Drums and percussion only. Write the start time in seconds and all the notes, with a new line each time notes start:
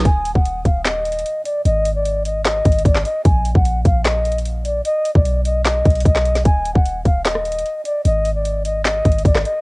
0.00 closed hi-hat
0.05 kick, closed hi-hat
0.25 closed hi-hat
0.35 kick
0.45 closed hi-hat
0.65 kick, closed hi-hat
0.85 snare, clap, closed hi-hat
1.05 closed hi-hat
1.12 closed hi-hat
1.19 closed hi-hat
1.26 closed hi-hat
1.45 closed hi-hat
1.65 closed hi-hat
1.85 closed hi-hat
2.05 closed hi-hat
2.25 closed hi-hat
2.45 snare, clap, closed hi-hat
2.65 kick, closed hi-hat
2.72 closed hi-hat
2.79 closed hi-hat
2.85 kick, closed hi-hat
2.95 snare, clap
3.05 closed hi-hat
3.25 kick, closed hi-hat
3.45 closed hi-hat
3.55 kick
3.65 closed hi-hat
3.85 kick, closed hi-hat
4.05 snare, clap, closed hi-hat
4.25 closed hi-hat
4.32 closed hi-hat
4.39 closed hi-hat
4.46 closed hi-hat
4.65 closed hi-hat
4.85 closed hi-hat
5.05 closed hi-hat
5.15 kick
5.25 closed hi-hat
5.45 closed hi-hat
5.65 snare, clap, closed hi-hat
5.85 kick, closed hi-hat
5.90 closed hi-hat
5.95 closed hi-hat
6.00 closed hi-hat
6.05 kick, closed hi-hat
6.15 snare, clap
6.25 closed hi-hat, open hi-hat
6.35 snare, closed hi-hat
6.45 kick, closed hi-hat
6.65 closed hi-hat
6.75 kick
6.85 closed hi-hat
7.05 kick, closed hi-hat
7.25 snare, clap, closed hi-hat
7.35 cross-stick
7.45 closed hi-hat
7.52 closed hi-hat
7.59 closed hi-hat
7.66 closed hi-hat
7.85 closed hi-hat
8.05 closed hi-hat
8.25 closed hi-hat
8.45 closed hi-hat
8.65 closed hi-hat
8.85 snare, clap, closed hi-hat
9.05 kick, closed hi-hat
9.12 closed hi-hat
9.19 closed hi-hat
9.25 kick, closed hi-hat
9.35 cross-stick, snare, clap
9.45 closed hi-hat